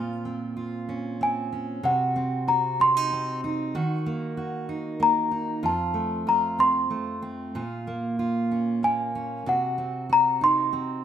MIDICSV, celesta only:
0, 0, Header, 1, 2, 480
1, 0, Start_track
1, 0, Key_signature, -5, "minor"
1, 0, Tempo, 634921
1, 1399, Time_signature, 6, 3, 24, 8
1, 8349, End_track
2, 0, Start_track
2, 0, Title_t, "Celesta"
2, 0, Program_c, 0, 8
2, 930, Note_on_c, 0, 80, 63
2, 1374, Note_off_c, 0, 80, 0
2, 1401, Note_on_c, 0, 78, 55
2, 1878, Note_on_c, 0, 82, 63
2, 1894, Note_off_c, 0, 78, 0
2, 2125, Note_off_c, 0, 82, 0
2, 2126, Note_on_c, 0, 84, 74
2, 2629, Note_off_c, 0, 84, 0
2, 3800, Note_on_c, 0, 82, 62
2, 4277, Note_on_c, 0, 81, 59
2, 4284, Note_off_c, 0, 82, 0
2, 4753, Note_on_c, 0, 82, 61
2, 4763, Note_off_c, 0, 81, 0
2, 4991, Note_on_c, 0, 84, 70
2, 4995, Note_off_c, 0, 82, 0
2, 5502, Note_off_c, 0, 84, 0
2, 6685, Note_on_c, 0, 80, 65
2, 7173, Note_on_c, 0, 78, 55
2, 7175, Note_off_c, 0, 80, 0
2, 7656, Note_on_c, 0, 82, 73
2, 7657, Note_off_c, 0, 78, 0
2, 7890, Note_on_c, 0, 84, 75
2, 7891, Note_off_c, 0, 82, 0
2, 8349, Note_off_c, 0, 84, 0
2, 8349, End_track
0, 0, End_of_file